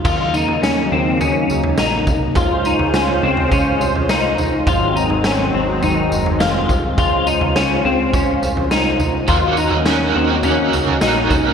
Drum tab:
CC |x---------------|----------------|----------------|----------------|
TB |x-x-x---x-x-x-x-|x-x-x---x-x-x-x-|x-x-x---x-x-x-x-|x-x-x---x-x-x-x-|
SD |----o-------o---|----o-------o---|----o-------o---|----o-------o---|
FT |o--o----o--o--o-|o--o---oo--o--o-|o--o----o--o--o-|o--o----o--o--o-|
BD |o-------------o-|o-------o-------|o-------------o-|o-------o-------|

CC |----------------|
TB |x-x-x---x-x-x-x-|
SD |----o-------o---|
FT |o--o----o--o--o-|
BD |o-------------o-|